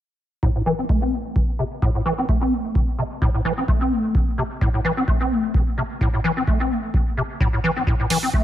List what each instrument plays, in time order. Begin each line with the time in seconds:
0.43 acid bass A2, kick
0.56 acid bass A2
0.66 acid bass E3
0.79 acid bass C4
0.89 acid bass A3, kick
1.02 acid bass C4
1.13 acid bass A3
1.36 acid bass B2, kick
1.59 acid bass C3
1.82 acid bass A2, kick
1.95 acid bass A2
2.06 acid bass E3
2.18 acid bass C4
2.29 acid bass A3, kick
2.41 acid bass C4
2.52 acid bass A3
2.75 acid bass B2, kick
2.99 acid bass C3
3.22 acid bass A2, kick
3.34 acid bass A2
3.45 acid bass E3
3.58 acid bass C4
3.68 acid bass A3, kick
3.81 acid bass C4
3.91 acid bass A3
4.15 acid bass B2, kick
4.38 acid bass C3
4.61 acid bass A2, kick
4.74 acid bass A2
4.85 acid bass E3
4.97 acid bass C4
5.08 acid bass A3, kick
5.21 acid bass C4
5.31 acid bass A3
5.54 acid bass B2, kick
5.78 acid bass C3
6.01 acid bass A2, kick
6.14 acid bass A2
6.24 acid bass E3
6.37 acid bass C4
6.47 acid bass A3, kick
6.60 acid bass C4
6.71 acid bass A3
6.94 acid bass B2, kick
7.17 acid bass C3
7.40 acid bass A2, kick
7.53 acid bass A2
7.64 acid bass E3
7.76 acid bass C4
7.87 acid bass A2, kick
8.00 acid bass A2
8.10 acid bass E3, open hi-hat
8.23 acid bass C4
8.33 acid bass A3, kick